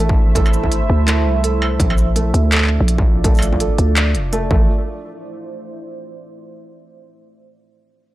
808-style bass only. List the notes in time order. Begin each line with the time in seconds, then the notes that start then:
Already playing: A1
0.90 D2
1.25 C2
1.80 A#1
2.34 D2
2.80 A#1
3.79 D2
4.15 F1
4.51 A1